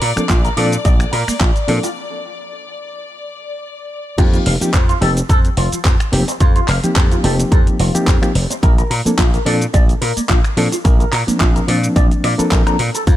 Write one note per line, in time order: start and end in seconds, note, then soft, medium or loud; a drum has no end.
0.00 0.11 A#2 medium
0.00 4.19 D5 medium
0.00 0.06 A#5 medium
0.00 open hi-hat loud
0.16 0.26 F3 medium
0.16 0.26 A#3 medium
0.16 0.21 A#3 medium
0.16 0.26 C4 medium
0.16 0.26 D4 medium
0.16 0.26 A4 medium
0.16 finger snap medium
0.16 muted slap bass stroke soft
0.16 shaker medium
0.29 0.48 A#1 medium
0.29 0.37 F4 medium
0.29 kick loud
0.29 clap loud
0.29 closed hi-hat medium
0.29 shaker medium
0.45 0.51 A#4 medium
0.45 closed hi-hat soft
0.45 shaker soft
0.57 0.76 A#2 medium
0.57 0.74 F3 loud
0.57 0.74 A#3 medium
0.57 0.75 C4 medium
0.57 0.75 D4 medium
0.57 0.75 A4 loud
0.57 0.65 D5 loud
0.57 open hi-hat loud
0.72 closed hi-hat soft
0.72 shaker medium
0.85 1.04 A#1 medium
0.85 0.92 D5 medium
0.85 kick loud
0.85 closed hi-hat medium
0.85 shaker medium
1.00 finger snap medium
1.00 closed hi-hat soft
1.00 shaker soft
1.12 1.22 A#2 medium
1.12 1.24 A#4 medium
1.12 open hi-hat loud
1.28 1.31 A#3 medium
1.28 finger snap medium
1.28 muted slap bass stroke soft
1.28 open hi-hat medium
1.28 shaker medium
1.40 1.50 A#1 medium
1.40 1.48 F4 medium
1.40 kick loud
1.40 clap loud
1.40 closed hi-hat medium
1.40 shaker medium
1.56 closed hi-hat soft
1.56 shaker soft
1.68 1.78 A#2 medium
1.68 1.79 F3 loud
1.68 1.79 A#3 medium
1.68 1.79 C4 medium
1.68 1.79 D4 medium
1.68 1.79 A4 loud
1.68 open hi-hat loud
1.83 1.87 F4 medium
1.83 closed hi-hat soft
1.83 shaker medium
4.18 4.37 F2 medium
4.18 4.55 F3 loud
4.18 4.55 A#3 medium
4.18 4.55 C4 medium
4.18 4.55 D#4 medium
4.18 4.26 F4 medium
4.18 4.55 G4 loud
4.18 kick loud
4.18 closed hi-hat medium
4.18 crash loud
4.18 shaker medium
4.33 4.43 F4 medium
4.33 closed hi-hat soft
4.33 shaker soft
4.46 4.56 F1 medium
4.46 4.51 F5 medium
4.46 open hi-hat loud
4.61 4.70 F3 medium
4.61 4.65 F3 medium
4.61 4.70 A#3 medium
4.61 4.70 C4 medium
4.61 4.70 D#4 medium
4.61 4.71 G4 medium
4.61 muted slap bass stroke soft
4.61 closed hi-hat soft
4.61 shaker medium
4.74 4.93 F2 medium
4.74 4.81 C4 medium
4.74 kick loud
4.74 clap loud
4.74 closed hi-hat medium
4.74 shaker medium
4.89 4.95 F4 medium
4.89 closed hi-hat soft
4.89 shaker soft
5.01 5.20 F1 medium
5.01 5.19 F3 loud
5.01 5.19 A#3 medium
5.01 5.19 C4 medium
5.01 5.19 D#4 medium
5.01 5.19 G4 loud
5.01 5.09 A4 loud
5.01 open hi-hat loud
5.17 closed hi-hat soft
5.17 shaker medium
5.29 5.48 F2 medium
5.29 5.37 A4 medium
5.29 kick loud
5.29 closed hi-hat medium
5.29 shaker medium
5.45 closed hi-hat soft
5.45 shaker soft
5.57 5.67 F1 medium
5.57 5.68 F4 medium
5.57 open hi-hat loud
5.72 5.76 F3 medium
5.72 muted slap bass stroke soft
5.72 closed hi-hat soft
5.72 shaker medium
5.85 5.95 F2 medium
5.85 5.92 C4 medium
5.85 kick loud
5.85 clap loud
5.85 closed hi-hat loud
5.85 shaker medium
6.00 finger snap medium
6.00 closed hi-hat soft
6.00 shaker soft
6.12 6.22 F1 loud
6.12 6.23 F3 loud
6.12 6.23 A#3 medium
6.12 6.24 C4 medium
6.12 6.24 D#4 medium
6.12 6.24 G4 loud
6.12 open hi-hat loud
6.28 6.32 C4 medium
6.28 closed hi-hat soft
6.28 shaker medium
6.40 6.59 F2 loud
6.40 6.48 F4 medium
6.40 kick loud
6.40 closed hi-hat medium
6.40 shaker medium
6.56 6.65 F4 medium
6.56 closed hi-hat soft
6.56 shaker soft
6.68 6.78 F1 medium
6.68 6.73 F5 medium
6.68 clap medium
6.68 open hi-hat loud
6.83 7.21 F3 medium
6.83 6.87 F3 medium
6.83 7.21 A#3 medium
6.83 7.21 C4 medium
6.83 7.21 D#4 medium
6.83 7.21 G4 medium
6.83 closed hi-hat soft
6.83 shaker medium
6.96 7.15 F2 medium
6.96 7.04 C4 medium
6.96 kick loud
6.96 clap loud
6.96 closed hi-hat medium
6.96 shaker medium
7.12 7.18 F4 medium
7.12 closed hi-hat soft
7.12 shaker soft
7.23 7.43 F1 medium
7.23 7.91 F3 medium
7.23 7.91 A#3 medium
7.23 7.91 C4 medium
7.23 7.91 D#4 medium
7.23 7.92 G4 loud
7.23 7.31 A4 loud
7.23 open hi-hat loud
7.39 closed hi-hat soft
7.39 shaker medium
7.52 7.66 F2 medium
7.52 7.59 A4 medium
7.52 kick loud
7.52 closed hi-hat medium
7.52 shaker medium
7.67 muted slap bass stroke soft
7.67 closed hi-hat soft
7.67 shaker soft
7.79 7.89 F1 medium
7.79 7.91 F4 medium
7.79 open hi-hat loud
7.94 8.18 F3 medium
7.94 7.98 F3 medium
7.94 8.19 A#3 medium
7.94 8.19 C4 medium
7.94 8.19 D#4 medium
7.94 8.19 G4 loud
7.94 closed hi-hat soft
7.94 shaker medium
8.07 8.17 F2 medium
8.07 8.15 C4 medium
8.07 kick loud
8.07 clap loud
8.07 closed hi-hat medium
8.07 shaker medium
8.22 8.31 F3 medium
8.22 8.31 A#3 medium
8.22 8.31 C4 medium
8.22 8.32 D#4 medium
8.22 8.32 G4 loud
8.22 finger snap medium
8.22 closed hi-hat soft
8.22 shaker soft
8.35 8.45 F1 loud
8.35 open hi-hat loud
8.50 8.54 C4 medium
8.50 closed hi-hat soft
8.50 shaker medium
8.63 8.82 A#1 loud
8.63 8.70 A#4 medium
8.63 kick loud
8.63 closed hi-hat medium
8.63 shaker medium
8.78 8.87 A#4 medium
8.78 closed hi-hat soft
8.78 shaker soft
8.90 9.00 A#2 medium
8.90 8.95 A#5 medium
8.90 open hi-hat loud
9.05 9.15 F3 medium
9.05 9.09 A#3 medium
9.05 9.15 A#3 medium
9.05 9.15 C4 medium
9.05 9.15 D4 medium
9.05 9.15 A4 medium
9.05 muted slap bass stroke soft
9.05 closed hi-hat soft
9.05 shaker medium
9.18 9.37 A#1 medium
9.18 9.26 F4 medium
9.18 kick loud
9.18 clap loud
9.18 closed hi-hat medium
9.18 shaker medium
9.33 9.40 A#4 medium
9.33 closed hi-hat soft
9.33 shaker soft
9.45 9.65 A#2 medium
9.45 9.63 F3 loud
9.45 9.63 A#3 medium
9.45 9.63 C4 medium
9.45 9.63 D4 medium
9.45 9.64 A4 loud
9.45 9.54 D5 loud
9.45 open hi-hat loud
9.61 closed hi-hat soft
9.61 shaker medium
9.73 9.93 A#1 medium
9.73 9.81 D5 medium
9.73 kick loud
9.73 closed hi-hat medium
9.73 shaker medium
9.89 closed hi-hat soft
9.89 shaker soft
10.01 10.11 A#2 medium
10.01 10.13 A#4 medium
10.01 open hi-hat loud
10.16 10.20 A#3 medium
10.16 muted slap bass stroke soft
10.16 closed hi-hat soft
10.16 shaker medium
10.29 10.39 A#1 medium
10.29 10.37 F4 medium
10.29 kick loud
10.29 clap loud
10.29 closed hi-hat medium
10.29 shaker medium
10.44 finger snap medium
10.44 closed hi-hat soft
10.44 shaker soft
10.57 10.67 A#2 medium
10.57 10.68 F3 loud
10.57 10.68 A#3 medium
10.57 10.68 C4 medium
10.57 10.68 D4 medium
10.57 10.68 A4 loud
10.57 open hi-hat loud
10.72 10.76 F4 medium
10.72 closed hi-hat soft
10.72 shaker medium
10.84 11.04 A#1 medium
10.84 10.92 A#4 medium
10.84 kick loud
10.84 closed hi-hat medium
10.84 shaker medium
11.00 11.09 A#4 medium
11.00 closed hi-hat soft
11.00 shaker soft
11.12 11.22 A#2 medium
11.12 11.17 A#5 medium
11.12 clap medium
11.12 open hi-hat loud
11.27 11.65 F3 medium
11.27 11.65 A#3 medium
11.27 11.32 A#3 medium
11.27 11.65 C4 medium
11.27 11.65 D4 medium
11.27 muted slap bass stroke soft
11.27 closed hi-hat soft
11.27 shaker medium
11.40 11.59 A#1 medium
11.40 11.48 F4 medium
11.40 kick loud
11.40 clap loud
11.40 closed hi-hat medium
11.40 shaker medium
11.56 11.62 A#4 medium
11.56 closed hi-hat soft
11.56 shaker soft
11.67 11.87 A#2 medium
11.67 12.35 F3 medium
11.67 12.35 A#3 medium
11.67 12.35 C4 medium
11.67 12.36 D4 medium
11.67 11.76 D5 loud
11.67 open hi-hat loud
11.84 closed hi-hat soft
11.84 shaker medium
11.96 12.11 A#1 medium
11.96 12.03 D5 medium
11.96 kick loud
11.96 closed hi-hat medium
11.96 shaker medium
12.11 muted slap bass stroke soft
12.11 closed hi-hat soft
12.11 shaker soft
12.24 12.34 A#2 medium
12.24 12.31 D5 medium
12.24 finger snap medium
12.24 open hi-hat loud
12.38 12.63 F3 medium
12.38 12.63 A#3 medium
12.38 12.63 C4 medium
12.38 12.63 D4 medium
12.38 12.63 A4 loud
12.38 12.43 A#4 medium
12.38 muted slap bass stroke soft
12.38 closed hi-hat soft
12.38 shaker medium
12.51 12.61 A#1 medium
12.51 12.59 A#4 medium
12.51 kick loud
12.51 clap loud
12.51 closed hi-hat medium
12.51 shaker medium
12.66 12.76 F3 medium
12.66 12.76 A#3 medium
12.66 12.76 C4 medium
12.66 12.76 D4 medium
12.66 12.76 A4 medium
12.66 12.76 A#5 medium
12.66 finger snap medium
12.66 closed hi-hat soft
12.66 shaker soft
12.79 12.89 A#2 medium
12.79 open hi-hat loud
12.94 13.01 A4 medium
12.94 closed hi-hat soft
12.94 shaker medium
13.07 13.17 F2 loud
13.07 13.15 F4 medium
13.07 kick loud
13.07 closed hi-hat medium
13.07 shaker medium